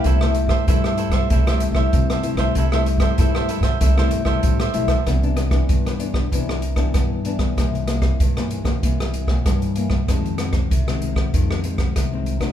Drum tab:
HH |x-x-x-xxxxx-xxxx|x-xxx-xxx-x-xxxx|xxxxxxx-x-xxx-xx|xxxxxxxxxxx-xxx-|
SD |-r-r-r-r-r-r-r-r|-r-r-r-r-r-r-r-r|r-rr-r-r-r-rr--r|r-rr-r-r-r-rr--r|
BD |o--oo--oo--oo--o|o--oo--oo--oo--o|o--oo--oo--oo--o|o--oo--oo--oo--o|

HH |xxxxxxx-x-xxx-xx|
SD |r-rr-r-r-r-rr--r|
BD |o--oo--oo--oo--o|